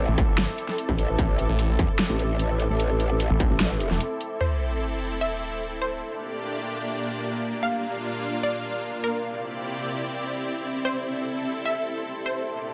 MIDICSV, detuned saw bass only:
0, 0, Header, 1, 2, 480
1, 0, Start_track
1, 0, Tempo, 402685
1, 1413, Time_signature, 4, 2, 24, 8
1, 15180, End_track
2, 0, Start_track
2, 0, Title_t, "Detuned saw bass"
2, 0, Program_c, 0, 39
2, 98, Note_on_c, 0, 33, 100
2, 195, Note_off_c, 0, 33, 0
2, 213, Note_on_c, 0, 33, 97
2, 318, Note_off_c, 0, 33, 0
2, 338, Note_on_c, 0, 31, 95
2, 558, Note_off_c, 0, 31, 0
2, 1778, Note_on_c, 0, 33, 100
2, 1998, Note_off_c, 0, 33, 0
2, 2018, Note_on_c, 0, 33, 104
2, 2114, Note_off_c, 0, 33, 0
2, 3938, Note_on_c, 0, 33, 102
2, 4035, Note_off_c, 0, 33, 0
2, 4053, Note_on_c, 0, 33, 97
2, 4158, Note_off_c, 0, 33, 0
2, 4657, Note_on_c, 0, 28, 98
2, 4754, Note_off_c, 0, 28, 0
2, 15180, End_track
0, 0, End_of_file